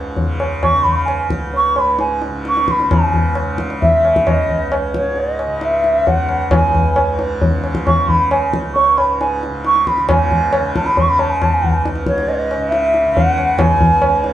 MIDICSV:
0, 0, Header, 1, 4, 480
1, 0, Start_track
1, 0, Tempo, 453858
1, 1139, Time_signature, 4, 2, 24, 8
1, 7366, Tempo, 444115
1, 11686, Tempo, 436999
1, 15386, End_track
2, 0, Start_track
2, 0, Title_t, "Bansuri"
2, 0, Program_c, 0, 73
2, 663, Note_on_c, 0, 85, 98
2, 884, Note_on_c, 0, 83, 86
2, 899, Note_off_c, 0, 85, 0
2, 973, Note_on_c, 0, 85, 69
2, 989, Note_off_c, 0, 83, 0
2, 1000, Note_on_c, 0, 83, 88
2, 1016, Note_off_c, 0, 85, 0
2, 1103, Note_off_c, 0, 83, 0
2, 1110, Note_on_c, 0, 80, 70
2, 1349, Note_off_c, 0, 80, 0
2, 1652, Note_on_c, 0, 85, 93
2, 1892, Note_on_c, 0, 83, 84
2, 1907, Note_off_c, 0, 85, 0
2, 2107, Note_off_c, 0, 83, 0
2, 2114, Note_on_c, 0, 80, 65
2, 2335, Note_off_c, 0, 80, 0
2, 2629, Note_on_c, 0, 85, 89
2, 2866, Note_on_c, 0, 83, 80
2, 2882, Note_off_c, 0, 85, 0
2, 3085, Note_off_c, 0, 83, 0
2, 3091, Note_on_c, 0, 80, 76
2, 3760, Note_off_c, 0, 80, 0
2, 4035, Note_on_c, 0, 76, 97
2, 4515, Note_on_c, 0, 75, 94
2, 4530, Note_off_c, 0, 76, 0
2, 4991, Note_off_c, 0, 75, 0
2, 5258, Note_on_c, 0, 73, 73
2, 5499, Note_on_c, 0, 75, 85
2, 5515, Note_off_c, 0, 73, 0
2, 5969, Note_on_c, 0, 76, 85
2, 5985, Note_off_c, 0, 75, 0
2, 6427, Note_on_c, 0, 78, 94
2, 6443, Note_off_c, 0, 76, 0
2, 6897, Note_off_c, 0, 78, 0
2, 6914, Note_on_c, 0, 80, 94
2, 7576, Note_off_c, 0, 80, 0
2, 8337, Note_on_c, 0, 85, 98
2, 8581, Note_on_c, 0, 83, 86
2, 8597, Note_off_c, 0, 85, 0
2, 8818, Note_off_c, 0, 83, 0
2, 8825, Note_on_c, 0, 80, 76
2, 9044, Note_off_c, 0, 80, 0
2, 9286, Note_on_c, 0, 85, 98
2, 9539, Note_on_c, 0, 83, 86
2, 9555, Note_off_c, 0, 85, 0
2, 9777, Note_off_c, 0, 83, 0
2, 9784, Note_on_c, 0, 80, 68
2, 10003, Note_off_c, 0, 80, 0
2, 10281, Note_on_c, 0, 85, 96
2, 10510, Note_on_c, 0, 83, 88
2, 10526, Note_off_c, 0, 85, 0
2, 10740, Note_off_c, 0, 83, 0
2, 10749, Note_on_c, 0, 80, 76
2, 11413, Note_off_c, 0, 80, 0
2, 11464, Note_on_c, 0, 81, 88
2, 11575, Note_on_c, 0, 83, 90
2, 11592, Note_off_c, 0, 81, 0
2, 11707, Note_on_c, 0, 85, 103
2, 11724, Note_off_c, 0, 83, 0
2, 11826, Note_on_c, 0, 83, 100
2, 11843, Note_off_c, 0, 85, 0
2, 11950, Note_on_c, 0, 81, 85
2, 11966, Note_off_c, 0, 83, 0
2, 12059, Note_on_c, 0, 80, 82
2, 12075, Note_off_c, 0, 81, 0
2, 12183, Note_on_c, 0, 81, 98
2, 12200, Note_off_c, 0, 80, 0
2, 12316, Note_on_c, 0, 80, 87
2, 12332, Note_off_c, 0, 81, 0
2, 12423, Note_on_c, 0, 78, 77
2, 12440, Note_off_c, 0, 80, 0
2, 12519, Note_on_c, 0, 81, 53
2, 12535, Note_off_c, 0, 78, 0
2, 12548, Note_on_c, 0, 80, 73
2, 12565, Note_off_c, 0, 81, 0
2, 12660, Note_off_c, 0, 80, 0
2, 12902, Note_on_c, 0, 73, 74
2, 13139, Note_on_c, 0, 75, 87
2, 13155, Note_off_c, 0, 73, 0
2, 13202, Note_on_c, 0, 73, 76
2, 13219, Note_off_c, 0, 75, 0
2, 13250, Note_on_c, 0, 75, 90
2, 13267, Note_off_c, 0, 73, 0
2, 13583, Note_on_c, 0, 76, 93
2, 13599, Note_off_c, 0, 75, 0
2, 13706, Note_off_c, 0, 76, 0
2, 13706, Note_on_c, 0, 76, 104
2, 14072, Note_on_c, 0, 78, 101
2, 14089, Note_off_c, 0, 76, 0
2, 14568, Note_on_c, 0, 80, 101
2, 14585, Note_off_c, 0, 78, 0
2, 15286, Note_off_c, 0, 80, 0
2, 15386, End_track
3, 0, Start_track
3, 0, Title_t, "Tanpura"
3, 0, Program_c, 1, 104
3, 0, Note_on_c, 1, 37, 62
3, 0, Note_on_c, 1, 44, 56
3, 0, Note_on_c, 1, 49, 57
3, 236, Note_off_c, 1, 49, 0
3, 236, Note_on_c, 1, 49, 63
3, 789, Note_off_c, 1, 49, 0
3, 789, Note_on_c, 1, 49, 59
3, 1327, Note_off_c, 1, 37, 0
3, 1332, Note_on_c, 1, 37, 57
3, 1868, Note_off_c, 1, 44, 0
3, 1872, Note_on_c, 1, 44, 53
3, 2418, Note_off_c, 1, 49, 0
3, 2418, Note_on_c, 1, 49, 55
3, 2960, Note_off_c, 1, 49, 0
3, 2960, Note_on_c, 1, 49, 55
3, 3066, Note_off_c, 1, 44, 0
3, 3066, Note_on_c, 1, 44, 59
3, 3602, Note_off_c, 1, 49, 0
3, 3602, Note_on_c, 1, 49, 57
3, 4142, Note_off_c, 1, 49, 0
3, 4142, Note_on_c, 1, 49, 61
3, 4690, Note_off_c, 1, 37, 0
3, 4694, Note_on_c, 1, 37, 63
3, 5229, Note_off_c, 1, 44, 0
3, 5229, Note_on_c, 1, 44, 55
3, 5778, Note_off_c, 1, 49, 0
3, 5778, Note_on_c, 1, 49, 60
3, 6312, Note_off_c, 1, 49, 0
3, 6312, Note_on_c, 1, 49, 64
3, 6843, Note_off_c, 1, 37, 0
3, 6848, Note_on_c, 1, 37, 66
3, 7375, Note_off_c, 1, 44, 0
3, 7379, Note_on_c, 1, 44, 60
3, 7922, Note_off_c, 1, 49, 0
3, 7922, Note_on_c, 1, 49, 63
3, 8463, Note_off_c, 1, 49, 0
3, 8463, Note_on_c, 1, 49, 61
3, 9001, Note_off_c, 1, 37, 0
3, 9006, Note_on_c, 1, 37, 59
3, 9546, Note_off_c, 1, 44, 0
3, 9551, Note_on_c, 1, 44, 57
3, 10092, Note_off_c, 1, 49, 0
3, 10092, Note_on_c, 1, 49, 59
3, 10635, Note_off_c, 1, 49, 0
3, 10635, Note_on_c, 1, 49, 58
3, 10741, Note_off_c, 1, 44, 0
3, 10741, Note_on_c, 1, 44, 63
3, 11281, Note_off_c, 1, 49, 0
3, 11281, Note_on_c, 1, 49, 64
3, 11811, Note_off_c, 1, 49, 0
3, 11811, Note_on_c, 1, 49, 60
3, 12371, Note_off_c, 1, 37, 0
3, 12375, Note_on_c, 1, 37, 69
3, 12911, Note_off_c, 1, 44, 0
3, 12911, Note_on_c, 1, 44, 58
3, 13448, Note_off_c, 1, 49, 0
3, 13448, Note_on_c, 1, 49, 67
3, 13989, Note_off_c, 1, 49, 0
3, 13989, Note_on_c, 1, 49, 69
3, 14521, Note_off_c, 1, 37, 0
3, 14526, Note_on_c, 1, 37, 67
3, 15040, Note_off_c, 1, 44, 0
3, 15045, Note_on_c, 1, 44, 61
3, 15386, Note_off_c, 1, 37, 0
3, 15386, Note_off_c, 1, 44, 0
3, 15386, Note_off_c, 1, 49, 0
3, 15386, End_track
4, 0, Start_track
4, 0, Title_t, "Tabla"
4, 175, Note_on_c, 9, 63, 76
4, 175, Note_on_c, 9, 64, 72
4, 280, Note_off_c, 9, 63, 0
4, 280, Note_off_c, 9, 64, 0
4, 423, Note_on_c, 9, 60, 62
4, 528, Note_off_c, 9, 60, 0
4, 664, Note_on_c, 9, 60, 70
4, 664, Note_on_c, 9, 64, 66
4, 770, Note_off_c, 9, 60, 0
4, 770, Note_off_c, 9, 64, 0
4, 905, Note_on_c, 9, 64, 46
4, 1010, Note_off_c, 9, 64, 0
4, 1144, Note_on_c, 9, 60, 72
4, 1250, Note_off_c, 9, 60, 0
4, 1379, Note_on_c, 9, 37, 57
4, 1485, Note_off_c, 9, 37, 0
4, 1625, Note_on_c, 9, 63, 70
4, 1731, Note_off_c, 9, 63, 0
4, 1862, Note_on_c, 9, 60, 56
4, 1968, Note_off_c, 9, 60, 0
4, 2101, Note_on_c, 9, 62, 71
4, 2207, Note_off_c, 9, 62, 0
4, 2344, Note_on_c, 9, 62, 60
4, 2450, Note_off_c, 9, 62, 0
4, 2592, Note_on_c, 9, 62, 70
4, 2698, Note_off_c, 9, 62, 0
4, 2719, Note_on_c, 9, 62, 56
4, 2825, Note_off_c, 9, 62, 0
4, 2833, Note_on_c, 9, 37, 55
4, 2939, Note_off_c, 9, 37, 0
4, 2958, Note_on_c, 9, 62, 54
4, 3064, Note_off_c, 9, 62, 0
4, 3078, Note_on_c, 9, 60, 100
4, 3078, Note_on_c, 9, 64, 93
4, 3184, Note_off_c, 9, 60, 0
4, 3184, Note_off_c, 9, 64, 0
4, 3317, Note_on_c, 9, 64, 76
4, 3422, Note_off_c, 9, 64, 0
4, 3547, Note_on_c, 9, 60, 77
4, 3653, Note_off_c, 9, 60, 0
4, 3788, Note_on_c, 9, 37, 63
4, 3894, Note_off_c, 9, 37, 0
4, 3915, Note_on_c, 9, 62, 57
4, 4021, Note_off_c, 9, 62, 0
4, 4042, Note_on_c, 9, 63, 81
4, 4042, Note_on_c, 9, 64, 73
4, 4148, Note_off_c, 9, 63, 0
4, 4148, Note_off_c, 9, 64, 0
4, 4281, Note_on_c, 9, 60, 65
4, 4387, Note_off_c, 9, 60, 0
4, 4401, Note_on_c, 9, 37, 59
4, 4507, Note_off_c, 9, 37, 0
4, 4514, Note_on_c, 9, 60, 80
4, 4514, Note_on_c, 9, 64, 66
4, 4619, Note_off_c, 9, 60, 0
4, 4619, Note_off_c, 9, 64, 0
4, 4749, Note_on_c, 9, 64, 53
4, 4854, Note_off_c, 9, 64, 0
4, 4989, Note_on_c, 9, 60, 78
4, 5095, Note_off_c, 9, 60, 0
4, 5229, Note_on_c, 9, 37, 63
4, 5334, Note_off_c, 9, 37, 0
4, 5456, Note_on_c, 9, 63, 78
4, 5561, Note_off_c, 9, 63, 0
4, 5702, Note_on_c, 9, 60, 64
4, 5808, Note_off_c, 9, 60, 0
4, 5936, Note_on_c, 9, 62, 79
4, 6041, Note_off_c, 9, 62, 0
4, 6176, Note_on_c, 9, 62, 62
4, 6282, Note_off_c, 9, 62, 0
4, 6420, Note_on_c, 9, 63, 79
4, 6420, Note_on_c, 9, 64, 75
4, 6526, Note_off_c, 9, 63, 0
4, 6526, Note_off_c, 9, 64, 0
4, 6651, Note_on_c, 9, 60, 56
4, 6756, Note_off_c, 9, 60, 0
4, 6885, Note_on_c, 9, 60, 105
4, 6885, Note_on_c, 9, 64, 88
4, 6991, Note_off_c, 9, 60, 0
4, 6991, Note_off_c, 9, 64, 0
4, 7137, Note_on_c, 9, 64, 77
4, 7243, Note_off_c, 9, 64, 0
4, 7362, Note_on_c, 9, 60, 79
4, 7470, Note_off_c, 9, 60, 0
4, 7608, Note_on_c, 9, 62, 60
4, 7716, Note_off_c, 9, 62, 0
4, 7853, Note_on_c, 9, 63, 80
4, 7853, Note_on_c, 9, 64, 74
4, 7961, Note_off_c, 9, 63, 0
4, 7961, Note_off_c, 9, 64, 0
4, 8091, Note_on_c, 9, 60, 61
4, 8199, Note_off_c, 9, 60, 0
4, 8211, Note_on_c, 9, 37, 58
4, 8319, Note_off_c, 9, 37, 0
4, 8342, Note_on_c, 9, 60, 74
4, 8342, Note_on_c, 9, 64, 74
4, 8450, Note_off_c, 9, 60, 0
4, 8450, Note_off_c, 9, 64, 0
4, 8579, Note_on_c, 9, 64, 53
4, 8687, Note_off_c, 9, 64, 0
4, 8822, Note_on_c, 9, 60, 80
4, 8930, Note_off_c, 9, 60, 0
4, 9063, Note_on_c, 9, 37, 63
4, 9171, Note_off_c, 9, 37, 0
4, 9304, Note_on_c, 9, 63, 78
4, 9412, Note_off_c, 9, 63, 0
4, 9544, Note_on_c, 9, 60, 63
4, 9652, Note_off_c, 9, 60, 0
4, 9791, Note_on_c, 9, 62, 78
4, 9899, Note_off_c, 9, 62, 0
4, 10032, Note_on_c, 9, 62, 59
4, 10140, Note_off_c, 9, 62, 0
4, 10263, Note_on_c, 9, 62, 75
4, 10371, Note_off_c, 9, 62, 0
4, 10383, Note_on_c, 9, 62, 58
4, 10491, Note_off_c, 9, 62, 0
4, 10506, Note_on_c, 9, 37, 59
4, 10614, Note_off_c, 9, 37, 0
4, 10621, Note_on_c, 9, 62, 55
4, 10730, Note_off_c, 9, 62, 0
4, 10740, Note_on_c, 9, 60, 112
4, 10740, Note_on_c, 9, 64, 93
4, 10848, Note_off_c, 9, 60, 0
4, 10848, Note_off_c, 9, 64, 0
4, 10980, Note_on_c, 9, 64, 78
4, 11088, Note_off_c, 9, 64, 0
4, 11215, Note_on_c, 9, 60, 85
4, 11323, Note_off_c, 9, 60, 0
4, 11464, Note_on_c, 9, 37, 66
4, 11572, Note_off_c, 9, 37, 0
4, 11576, Note_on_c, 9, 62, 61
4, 11684, Note_off_c, 9, 62, 0
4, 11697, Note_on_c, 9, 63, 86
4, 11697, Note_on_c, 9, 64, 74
4, 11807, Note_off_c, 9, 63, 0
4, 11807, Note_off_c, 9, 64, 0
4, 11938, Note_on_c, 9, 60, 67
4, 12048, Note_off_c, 9, 60, 0
4, 12186, Note_on_c, 9, 60, 82
4, 12186, Note_on_c, 9, 64, 69
4, 12296, Note_off_c, 9, 60, 0
4, 12296, Note_off_c, 9, 64, 0
4, 12435, Note_on_c, 9, 64, 56
4, 12545, Note_off_c, 9, 64, 0
4, 12667, Note_on_c, 9, 62, 83
4, 12776, Note_off_c, 9, 62, 0
4, 12776, Note_on_c, 9, 62, 65
4, 12885, Note_off_c, 9, 62, 0
4, 12897, Note_on_c, 9, 37, 68
4, 13007, Note_off_c, 9, 37, 0
4, 13023, Note_on_c, 9, 62, 62
4, 13133, Note_off_c, 9, 62, 0
4, 13140, Note_on_c, 9, 63, 85
4, 13250, Note_off_c, 9, 63, 0
4, 13386, Note_on_c, 9, 60, 65
4, 13496, Note_off_c, 9, 60, 0
4, 13620, Note_on_c, 9, 62, 91
4, 13730, Note_off_c, 9, 62, 0
4, 13859, Note_on_c, 9, 62, 64
4, 13969, Note_off_c, 9, 62, 0
4, 14108, Note_on_c, 9, 63, 84
4, 14108, Note_on_c, 9, 64, 75
4, 14217, Note_off_c, 9, 63, 0
4, 14217, Note_off_c, 9, 64, 0
4, 14341, Note_on_c, 9, 60, 64
4, 14451, Note_off_c, 9, 60, 0
4, 14569, Note_on_c, 9, 60, 109
4, 14569, Note_on_c, 9, 64, 102
4, 14679, Note_off_c, 9, 60, 0
4, 14679, Note_off_c, 9, 64, 0
4, 14811, Note_on_c, 9, 64, 79
4, 14920, Note_off_c, 9, 64, 0
4, 15042, Note_on_c, 9, 60, 81
4, 15152, Note_off_c, 9, 60, 0
4, 15286, Note_on_c, 9, 62, 64
4, 15386, Note_off_c, 9, 62, 0
4, 15386, End_track
0, 0, End_of_file